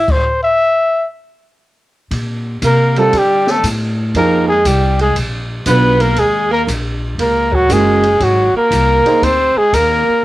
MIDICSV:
0, 0, Header, 1, 7, 480
1, 0, Start_track
1, 0, Tempo, 507185
1, 85, Time_signature, 4, 2, 24, 8
1, 9699, End_track
2, 0, Start_track
2, 0, Title_t, "Trumpet"
2, 0, Program_c, 0, 56
2, 0, Note_on_c, 0, 76, 78
2, 109, Note_on_c, 0, 72, 65
2, 123, Note_off_c, 0, 76, 0
2, 404, Note_off_c, 0, 72, 0
2, 410, Note_on_c, 0, 76, 88
2, 1011, Note_off_c, 0, 76, 0
2, 2517, Note_on_c, 0, 70, 81
2, 2831, Note_on_c, 0, 69, 85
2, 2845, Note_off_c, 0, 70, 0
2, 3012, Note_on_c, 0, 67, 80
2, 3026, Note_off_c, 0, 69, 0
2, 3322, Note_on_c, 0, 69, 81
2, 3336, Note_off_c, 0, 67, 0
2, 3465, Note_off_c, 0, 69, 0
2, 3946, Note_on_c, 0, 70, 81
2, 4236, Note_off_c, 0, 70, 0
2, 4244, Note_on_c, 0, 68, 87
2, 4420, Note_on_c, 0, 67, 68
2, 4434, Note_off_c, 0, 68, 0
2, 4735, Note_off_c, 0, 67, 0
2, 4747, Note_on_c, 0, 68, 85
2, 4887, Note_off_c, 0, 68, 0
2, 5378, Note_on_c, 0, 71, 85
2, 5691, Note_on_c, 0, 70, 80
2, 5706, Note_off_c, 0, 71, 0
2, 5859, Note_on_c, 0, 68, 78
2, 5873, Note_off_c, 0, 70, 0
2, 6174, Note_off_c, 0, 68, 0
2, 6179, Note_on_c, 0, 70, 82
2, 6271, Note_off_c, 0, 70, 0
2, 6823, Note_on_c, 0, 70, 72
2, 7147, Note_on_c, 0, 66, 84
2, 7161, Note_off_c, 0, 70, 0
2, 7318, Note_on_c, 0, 68, 87
2, 7332, Note_off_c, 0, 66, 0
2, 7794, Note_on_c, 0, 66, 78
2, 7809, Note_off_c, 0, 68, 0
2, 8102, Note_off_c, 0, 66, 0
2, 8115, Note_on_c, 0, 70, 87
2, 8745, Note_on_c, 0, 72, 81
2, 8759, Note_off_c, 0, 70, 0
2, 9063, Note_on_c, 0, 68, 89
2, 9077, Note_off_c, 0, 72, 0
2, 9220, Note_on_c, 0, 70, 92
2, 9234, Note_off_c, 0, 68, 0
2, 9699, Note_off_c, 0, 70, 0
2, 9699, End_track
3, 0, Start_track
3, 0, Title_t, "Grand piano"
3, 0, Program_c, 1, 0
3, 2813, Note_on_c, 1, 60, 61
3, 2814, Note_on_c, 1, 55, 72
3, 2821, Note_on_c, 1, 69, 78
3, 2822, Note_on_c, 1, 65, 70
3, 2954, Note_off_c, 1, 60, 0
3, 2955, Note_off_c, 1, 55, 0
3, 2958, Note_off_c, 1, 69, 0
3, 2959, Note_off_c, 1, 65, 0
3, 3937, Note_on_c, 1, 53, 69
3, 3939, Note_on_c, 1, 63, 63
3, 3943, Note_on_c, 1, 58, 60
3, 3952, Note_on_c, 1, 68, 75
3, 4221, Note_off_c, 1, 53, 0
3, 4222, Note_off_c, 1, 63, 0
3, 4224, Note_off_c, 1, 58, 0
3, 4229, Note_off_c, 1, 68, 0
3, 5363, Note_on_c, 1, 59, 57
3, 5363, Note_on_c, 1, 62, 49
3, 5373, Note_on_c, 1, 65, 52
3, 5378, Note_on_c, 1, 71, 64
3, 5654, Note_off_c, 1, 59, 0
3, 5654, Note_off_c, 1, 62, 0
3, 5659, Note_off_c, 1, 65, 0
3, 5661, Note_off_c, 1, 71, 0
3, 7284, Note_on_c, 1, 56, 69
3, 7289, Note_on_c, 1, 61, 63
3, 7293, Note_on_c, 1, 66, 65
3, 7300, Note_on_c, 1, 70, 79
3, 7575, Note_off_c, 1, 56, 0
3, 7577, Note_off_c, 1, 61, 0
3, 7579, Note_off_c, 1, 66, 0
3, 7583, Note_off_c, 1, 70, 0
3, 8573, Note_on_c, 1, 58, 73
3, 8576, Note_on_c, 1, 68, 61
3, 8581, Note_on_c, 1, 63, 61
3, 8587, Note_on_c, 1, 72, 81
3, 8714, Note_off_c, 1, 58, 0
3, 8715, Note_off_c, 1, 68, 0
3, 8718, Note_off_c, 1, 63, 0
3, 8721, Note_off_c, 1, 72, 0
3, 9699, End_track
4, 0, Start_track
4, 0, Title_t, "Alto saxophone"
4, 0, Program_c, 2, 65
4, 2496, Note_on_c, 2, 58, 68
4, 2822, Note_on_c, 2, 57, 67
4, 2836, Note_off_c, 2, 58, 0
4, 2977, Note_on_c, 2, 55, 73
4, 2991, Note_off_c, 2, 57, 0
4, 3284, Note_on_c, 2, 57, 71
4, 3299, Note_off_c, 2, 55, 0
4, 3446, Note_off_c, 2, 57, 0
4, 3935, Note_on_c, 2, 58, 65
4, 4230, Note_off_c, 2, 58, 0
4, 4270, Note_on_c, 2, 56, 71
4, 4425, Note_on_c, 2, 55, 59
4, 4439, Note_off_c, 2, 56, 0
4, 4737, Note_off_c, 2, 55, 0
4, 4741, Note_on_c, 2, 56, 73
4, 4883, Note_off_c, 2, 56, 0
4, 5366, Note_on_c, 2, 59, 86
4, 5676, Note_on_c, 2, 58, 82
4, 5690, Note_off_c, 2, 59, 0
4, 5864, Note_on_c, 2, 56, 67
4, 5878, Note_off_c, 2, 58, 0
4, 6155, Note_off_c, 2, 56, 0
4, 6160, Note_on_c, 2, 58, 74
4, 6312, Note_off_c, 2, 58, 0
4, 6807, Note_on_c, 2, 58, 69
4, 7115, Note_on_c, 2, 54, 80
4, 7129, Note_off_c, 2, 58, 0
4, 7293, Note_on_c, 2, 56, 83
4, 7307, Note_off_c, 2, 54, 0
4, 7771, Note_on_c, 2, 54, 70
4, 7786, Note_off_c, 2, 56, 0
4, 8090, Note_off_c, 2, 54, 0
4, 8103, Note_on_c, 2, 58, 71
4, 8737, Note_on_c, 2, 60, 78
4, 8751, Note_off_c, 2, 58, 0
4, 9063, Note_on_c, 2, 56, 70
4, 9077, Note_off_c, 2, 60, 0
4, 9235, Note_on_c, 2, 58, 82
4, 9250, Note_off_c, 2, 56, 0
4, 9699, Note_off_c, 2, 58, 0
4, 9699, End_track
5, 0, Start_track
5, 0, Title_t, "Upright bass"
5, 0, Program_c, 3, 32
5, 1995, Note_on_c, 3, 46, 75
5, 2467, Note_off_c, 3, 46, 0
5, 2478, Note_on_c, 3, 48, 91
5, 2949, Note_off_c, 3, 48, 0
5, 2961, Note_on_c, 3, 50, 71
5, 3430, Note_off_c, 3, 50, 0
5, 3439, Note_on_c, 3, 45, 94
5, 3909, Note_off_c, 3, 45, 0
5, 3919, Note_on_c, 3, 41, 74
5, 4389, Note_off_c, 3, 41, 0
5, 4399, Note_on_c, 3, 36, 96
5, 4869, Note_off_c, 3, 36, 0
5, 4882, Note_on_c, 3, 34, 78
5, 5350, Note_off_c, 3, 34, 0
5, 5357, Note_on_c, 3, 35, 91
5, 5828, Note_off_c, 3, 35, 0
5, 5836, Note_on_c, 3, 39, 75
5, 6307, Note_off_c, 3, 39, 0
5, 6315, Note_on_c, 3, 34, 92
5, 6786, Note_off_c, 3, 34, 0
5, 6798, Note_on_c, 3, 37, 71
5, 7268, Note_off_c, 3, 37, 0
5, 7278, Note_on_c, 3, 30, 90
5, 7748, Note_off_c, 3, 30, 0
5, 7763, Note_on_c, 3, 32, 77
5, 8063, Note_off_c, 3, 32, 0
5, 8239, Note_on_c, 3, 36, 88
5, 8541, Note_off_c, 3, 36, 0
5, 8723, Note_on_c, 3, 38, 71
5, 9024, Note_off_c, 3, 38, 0
5, 9207, Note_on_c, 3, 39, 85
5, 9506, Note_off_c, 3, 39, 0
5, 9699, End_track
6, 0, Start_track
6, 0, Title_t, "Muted upright bass strokes"
6, 8078, Note_on_c, 9, 29, 38
6, 8173, Note_off_c, 9, 29, 0
6, 8574, Note_on_c, 9, 29, 37
6, 8669, Note_off_c, 9, 29, 0
6, 9046, Note_on_c, 9, 29, 37
6, 9141, Note_off_c, 9, 29, 0
6, 9542, Note_on_c, 9, 29, 37
6, 9636, Note_off_c, 9, 29, 0
6, 9699, End_track
7, 0, Start_track
7, 0, Title_t, "Drums"
7, 76, Note_on_c, 9, 36, 66
7, 79, Note_on_c, 9, 49, 58
7, 171, Note_off_c, 9, 36, 0
7, 173, Note_off_c, 9, 49, 0
7, 1999, Note_on_c, 9, 36, 21
7, 1999, Note_on_c, 9, 51, 56
7, 2094, Note_off_c, 9, 36, 0
7, 2094, Note_off_c, 9, 51, 0
7, 2479, Note_on_c, 9, 44, 51
7, 2479, Note_on_c, 9, 51, 61
7, 2480, Note_on_c, 9, 36, 18
7, 2574, Note_off_c, 9, 44, 0
7, 2574, Note_off_c, 9, 51, 0
7, 2575, Note_off_c, 9, 36, 0
7, 2804, Note_on_c, 9, 51, 43
7, 2898, Note_off_c, 9, 51, 0
7, 2961, Note_on_c, 9, 51, 62
7, 2962, Note_on_c, 9, 36, 21
7, 3056, Note_off_c, 9, 51, 0
7, 3057, Note_off_c, 9, 36, 0
7, 3284, Note_on_c, 9, 38, 33
7, 3378, Note_off_c, 9, 38, 0
7, 3442, Note_on_c, 9, 36, 19
7, 3442, Note_on_c, 9, 44, 62
7, 3442, Note_on_c, 9, 51, 72
7, 3536, Note_off_c, 9, 44, 0
7, 3536, Note_off_c, 9, 51, 0
7, 3537, Note_off_c, 9, 36, 0
7, 3923, Note_on_c, 9, 36, 16
7, 3923, Note_on_c, 9, 51, 54
7, 4017, Note_off_c, 9, 36, 0
7, 4018, Note_off_c, 9, 51, 0
7, 4402, Note_on_c, 9, 36, 28
7, 4403, Note_on_c, 9, 44, 58
7, 4403, Note_on_c, 9, 51, 75
7, 4497, Note_off_c, 9, 36, 0
7, 4497, Note_off_c, 9, 44, 0
7, 4497, Note_off_c, 9, 51, 0
7, 4725, Note_on_c, 9, 51, 39
7, 4819, Note_off_c, 9, 51, 0
7, 4880, Note_on_c, 9, 36, 22
7, 4882, Note_on_c, 9, 51, 68
7, 4975, Note_off_c, 9, 36, 0
7, 4977, Note_off_c, 9, 51, 0
7, 5354, Note_on_c, 9, 44, 66
7, 5354, Note_on_c, 9, 51, 67
7, 5358, Note_on_c, 9, 36, 24
7, 5448, Note_off_c, 9, 44, 0
7, 5448, Note_off_c, 9, 51, 0
7, 5452, Note_off_c, 9, 36, 0
7, 5678, Note_on_c, 9, 51, 48
7, 5773, Note_off_c, 9, 51, 0
7, 5833, Note_on_c, 9, 51, 59
7, 5838, Note_on_c, 9, 36, 18
7, 5928, Note_off_c, 9, 51, 0
7, 5932, Note_off_c, 9, 36, 0
7, 6320, Note_on_c, 9, 36, 24
7, 6323, Note_on_c, 9, 44, 62
7, 6323, Note_on_c, 9, 51, 68
7, 6414, Note_off_c, 9, 36, 0
7, 6418, Note_off_c, 9, 44, 0
7, 6418, Note_off_c, 9, 51, 0
7, 6802, Note_on_c, 9, 36, 22
7, 6803, Note_on_c, 9, 51, 60
7, 6897, Note_off_c, 9, 36, 0
7, 6898, Note_off_c, 9, 51, 0
7, 7123, Note_on_c, 9, 36, 48
7, 7217, Note_off_c, 9, 36, 0
7, 7281, Note_on_c, 9, 36, 22
7, 7282, Note_on_c, 9, 44, 65
7, 7282, Note_on_c, 9, 51, 69
7, 7376, Note_off_c, 9, 36, 0
7, 7377, Note_off_c, 9, 44, 0
7, 7377, Note_off_c, 9, 51, 0
7, 7603, Note_on_c, 9, 51, 46
7, 7698, Note_off_c, 9, 51, 0
7, 7763, Note_on_c, 9, 36, 27
7, 7764, Note_on_c, 9, 51, 59
7, 7858, Note_off_c, 9, 36, 0
7, 7859, Note_off_c, 9, 51, 0
7, 8245, Note_on_c, 9, 36, 23
7, 8247, Note_on_c, 9, 44, 58
7, 8247, Note_on_c, 9, 51, 65
7, 8340, Note_off_c, 9, 36, 0
7, 8342, Note_off_c, 9, 44, 0
7, 8342, Note_off_c, 9, 51, 0
7, 8572, Note_on_c, 9, 51, 42
7, 8666, Note_off_c, 9, 51, 0
7, 8728, Note_on_c, 9, 36, 22
7, 8735, Note_on_c, 9, 51, 65
7, 8822, Note_off_c, 9, 36, 0
7, 8830, Note_off_c, 9, 51, 0
7, 9208, Note_on_c, 9, 36, 28
7, 9214, Note_on_c, 9, 44, 57
7, 9214, Note_on_c, 9, 51, 75
7, 9303, Note_off_c, 9, 36, 0
7, 9308, Note_off_c, 9, 44, 0
7, 9308, Note_off_c, 9, 51, 0
7, 9699, End_track
0, 0, End_of_file